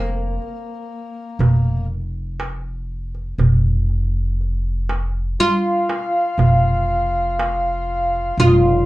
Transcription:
0.00 0.36 F1 medium
0.00 1.86 A#3 medium
0.42 darbuka ka soft
1.39 3.35 F1 medium
1.39 darbuka dum medium
1.65 darbuka ka soft
2.40 darbuka tek medium
3.15 darbuka ka soft
3.38 5.34 F1 medium
3.38 darbuka dum medium
3.90 darbuka ka soft
4.41 darbuka ka soft
4.89 darbuka tek medium
5.39 8.38 F4 loud
5.39 darbuka ka soft
5.89 darbuka tek medium
6.38 8.34 F1 medium
6.38 darbuka dum medium
6.64 darbuka ka soft
7.39 darbuka tek medium
8.15 darbuka ka soft
8.37 8.86 F1 medium
8.37 8.45 F4 medium
8.37 8.86 F4 medium
8.37 darbuka dum medium
8.45 8.52 D#4 medium
8.53 8.86 F4 medium
8.66 darbuka ka soft

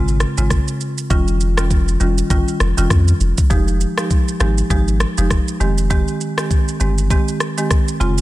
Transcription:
0.00 0.25 G#1 medium
0.00 0.34 C#3 medium
0.00 0.34 G#3 medium
0.00 0.34 C4 medium
0.00 0.34 F4 loud
0.08 shaker medium
0.20 cross-stick medium
0.20 shaker medium
0.37 0.60 G#1 medium
0.37 0.57 C#3 medium
0.37 0.57 G#3 medium
0.37 0.57 C4 medium
0.37 0.57 F4 medium
0.37 shaker medium
0.50 kick medium
0.50 cross-stick medium
0.50 shaker medium
0.68 shaker medium
0.81 shaker soft
0.98 shaker medium
1.10 1.97 F1 loud
1.10 1.54 D#3 medium
1.10 1.54 G3 medium
1.10 1.54 C#4 medium
1.10 1.54 F4 loud
1.10 kick loud
1.10 shaker medium
1.28 shaker soft
1.41 shaker medium
1.57 1.97 D#3 medium
1.57 1.97 G3 medium
1.57 1.97 C#4 medium
1.57 1.98 F4 medium
1.57 cross-stick loud
1.57 shaker loud
1.71 kick loud
1.71 shaker medium
1.88 shaker medium
2.00 2.22 F1 medium
2.00 2.28 D#3 medium
2.00 2.29 G3 medium
2.00 2.29 C#4 medium
2.00 2.29 F4 medium
2.00 shaker medium
2.18 shaker medium
2.30 2.43 G1 loud
2.30 2.74 D#3 medium
2.30 2.74 G3 medium
2.30 2.74 C#4 medium
2.30 2.74 F4 loud
2.30 kick loud
2.30 shaker medium
2.48 shaker medium
2.60 2.73 F1 medium
2.60 cross-stick medium
2.60 shaker medium
2.78 2.87 F1 medium
2.78 2.97 D#3 medium
2.78 2.97 G3 medium
2.78 2.97 C#4 medium
2.78 2.97 F4 medium
2.78 shaker medium
2.90 3.12 F2 loud
2.90 kick medium
2.90 cross-stick medium
2.90 shaker medium
3.08 shaker medium
3.20 3.33 F1 medium
3.20 shaker soft
3.38 kick medium
3.38 shaker medium
3.50 3.85 F1 loud
3.50 3.94 F3 medium
3.50 3.94 G#3 medium
3.50 3.94 D#4 medium
3.50 3.94 G4 loud
3.50 kick loud
3.50 shaker medium
3.68 shaker soft
3.81 shaker medium
3.98 4.37 F3 medium
3.98 4.38 G#3 medium
3.98 4.38 D#4 medium
3.98 4.38 G4 medium
3.98 cross-stick loud
3.98 shaker medium
4.11 kick medium
4.11 shaker medium
4.28 shaker medium
4.40 4.62 G#1 loud
4.40 4.68 F3 medium
4.40 4.68 G#3 medium
4.40 4.69 D#4 medium
4.40 4.69 G4 medium
4.40 cross-stick medium
4.40 shaker medium
4.58 shaker medium
4.70 5.05 G#1 loud
4.70 5.14 F3 medium
4.70 5.14 G#3 medium
4.70 5.14 D#4 medium
4.70 5.14 G4 loud
4.70 kick loud
4.70 shaker medium
4.88 shaker medium
5.00 cross-stick loud
5.00 shaker medium
5.18 5.40 F1 medium
5.18 5.37 F3 medium
5.18 5.37 G#3 medium
5.18 5.37 D#4 medium
5.18 5.37 G4 medium
5.18 shaker medium
5.30 kick medium
5.30 cross-stick medium
5.30 shaker medium
5.48 shaker medium
5.60 6.04 F1 loud
5.60 5.88 D#3 medium
5.60 5.88 G#3 medium
5.60 5.89 C4 medium
5.60 5.89 G4 medium
5.60 shaker soft
5.78 shaker medium
5.90 6.34 D#3 medium
5.90 6.34 G#3 medium
5.90 6.34 C4 medium
5.90 6.34 G4 loud
5.90 kick loud
5.90 shaker medium
6.08 shaker soft
6.21 shaker medium
6.38 6.77 D#3 medium
6.38 6.77 G#3 medium
6.38 6.78 C4 medium
6.38 6.78 G4 medium
6.38 cross-stick loud
6.38 shaker medium
6.51 kick medium
6.51 shaker medium
6.68 shaker medium
6.80 7.15 G1 medium
6.80 7.08 D#3 medium
6.80 7.09 G#3 medium
6.80 7.09 C4 medium
6.80 7.09 G4 medium
6.80 shaker medium
6.98 shaker medium
7.10 7.54 D#3 medium
7.10 7.54 G#3 medium
7.10 7.54 C4 medium
7.10 7.54 G4 loud
7.10 kick loud
7.10 shaker medium
7.28 shaker medium
7.40 cross-stick medium
7.40 shaker soft
7.58 7.77 D#3 medium
7.58 7.77 G#3 medium
7.58 7.77 C4 medium
7.58 7.78 G4 medium
7.58 shaker medium
7.71 kick medium
7.71 cross-stick medium
7.71 shaker medium
7.88 shaker medium
8.00 8.21 F1 loud
8.00 8.21 C#3 medium
8.00 8.21 G#3 medium
8.00 8.21 C4 medium
8.00 8.21 F4 loud
8.00 shaker soft
8.18 shaker medium

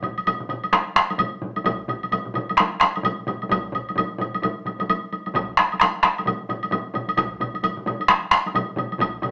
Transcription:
0.02 taiko low-mid medium
0.02 taiko mid medium
0.02 taiko high soft
0.02 high woodblock soft
0.18 taiko high soft
0.18 high woodblock soft
0.26 taiko low-mid medium
0.26 taiko mid medium
0.26 taiko high medium
0.26 high woodblock medium
0.40 taiko low-mid medium
0.40 taiko mid medium
0.49 taiko low-mid medium
0.49 taiko mid medium
0.49 high woodblock soft
0.64 taiko high soft
0.64 high woodblock soft
0.73 taiko rim medium
0.73 taiko high medium
0.73 high woodblock soft
0.96 taiko rim medium
0.96 taiko high medium
0.96 high woodblock soft
1.10 taiko high medium
1.10 high woodblock soft
1.18 taiko low-mid medium
1.18 taiko mid medium
1.18 taiko high medium
1.18 high woodblock medium
1.42 taiko low-mid medium
1.42 taiko mid medium
1.42 taiko high soft
1.56 taiko high medium
1.56 high woodblock soft
1.64 taiko medium
1.64 taiko low-mid medium
1.64 taiko mid medium
1.64 taiko high medium
1.64 high woodblock medium
1.88 taiko low-mid medium
1.88 taiko mid medium
1.88 high woodblock soft
2.03 taiko high soft
2.03 high woodblock soft
2.12 taiko low-mid medium
2.12 taiko mid medium
2.12 taiko high medium
2.12 high woodblock soft
2.25 taiko low-mid medium
2.25 taiko mid medium
2.34 taiko low-mid medium
2.34 taiko mid medium
2.34 taiko high medium
2.34 high woodblock soft
2.49 taiko high medium
2.49 high woodblock soft
2.57 taiko rim medium
2.57 taiko high medium
2.57 high woodblock soft
2.80 taiko rim medium
2.80 taiko high medium
2.80 high woodblock soft
2.96 taiko high medium
2.96 high woodblock soft
3.03 taiko low-mid medium
3.03 taiko mid medium
3.03 taiko high medium
3.03 high woodblock soft
3.27 taiko low-mid medium
3.27 taiko mid medium
3.27 taiko high medium
3.27 high woodblock soft
3.42 taiko high medium
3.42 high woodblock soft
3.49 taiko loud
3.49 taiko low-mid medium
3.49 taiko mid medium
3.49 taiko high medium
3.49 high woodblock medium
3.72 taiko low-mid medium
3.72 taiko mid medium
3.72 taiko high soft
3.72 high woodblock soft
3.89 taiko high medium
3.89 high woodblock soft
3.96 taiko low-mid medium
3.96 taiko mid medium
3.96 taiko high medium
3.96 high woodblock medium
4.18 taiko low-mid loud
4.18 taiko mid medium
4.18 taiko high medium
4.18 high woodblock soft
4.34 taiko high soft
4.34 high woodblock soft
4.42 taiko low-mid medium
4.42 taiko mid medium
4.42 taiko high medium
4.42 high woodblock soft
4.65 taiko low-mid medium
4.65 taiko mid medium
4.65 taiko high medium
4.65 high woodblock soft
4.79 taiko low-mid medium
4.79 taiko mid medium
4.79 taiko high medium
4.79 high woodblock soft
4.90 taiko high medium
4.90 high woodblock soft
5.13 taiko high medium
5.13 high woodblock soft
5.26 taiko high medium
5.26 high woodblock soft
5.34 taiko loud
5.34 taiko low-mid loud
5.34 taiko mid loud
5.34 taiko high medium
5.34 high woodblock soft
5.57 taiko rim medium
5.57 taiko high soft
5.57 high woodblock soft
5.72 taiko high soft
5.72 high woodblock soft
5.80 taiko rim medium
5.80 high woodblock soft
5.81 taiko rim medium
5.81 taiko high medium
6.03 taiko rim medium
6.03 taiko high medium
6.03 high woodblock soft
6.18 taiko high medium
6.18 high woodblock soft
6.26 taiko low-mid medium
6.26 taiko mid medium
6.26 taiko high medium
6.26 high woodblock soft
6.49 taiko low-mid loud
6.49 taiko mid medium
6.49 taiko high medium
6.49 high woodblock soft
6.63 taiko high medium
6.63 high woodblock soft
6.71 taiko low-mid medium
6.71 taiko mid medium
6.71 taiko high medium
6.71 high woodblock medium
6.94 taiko low-mid loud
6.94 taiko mid medium
6.94 taiko high medium
6.94 high woodblock soft
7.08 taiko high medium
7.08 high woodblock soft
7.17 taiko loud
7.17 taiko low-mid medium
7.17 taiko mid loud
7.17 taiko high medium
7.17 high woodblock medium
7.40 taiko low-mid medium
7.40 taiko mid medium
7.40 taiko high soft
7.40 high woodblock soft
7.54 taiko high soft
7.54 high woodblock soft
7.63 taiko low-mid medium
7.63 taiko mid medium
7.63 taiko high medium
7.63 high woodblock soft
7.76 taiko low-mid medium
7.76 taiko mid medium
7.86 taiko low-mid medium
7.86 taiko mid loud
7.86 taiko high medium
7.86 high woodblock soft
8.00 taiko high soft
8.00 high woodblock soft
8.08 taiko rim medium
8.08 taiko high medium
8.08 high woodblock soft
8.31 taiko rim medium
8.31 taiko high soft
8.31 high woodblock soft
8.46 taiko high medium
8.46 high woodblock soft
8.54 taiko low-mid loud
8.54 taiko mid loud
8.54 taiko high medium
8.54 high woodblock medium
8.76 taiko low-mid medium
8.76 taiko mid loud
8.76 taiko high soft
8.76 high woodblock soft
8.92 taiko high medium
8.92 high woodblock soft
8.98 taiko loud
8.98 taiko low-mid loud
8.98 taiko mid loud
8.98 taiko high medium
8.98 high woodblock medium
9.22 taiko low-mid loud
9.22 taiko mid loud
9.22 taiko high soft
9.22 high woodblock soft

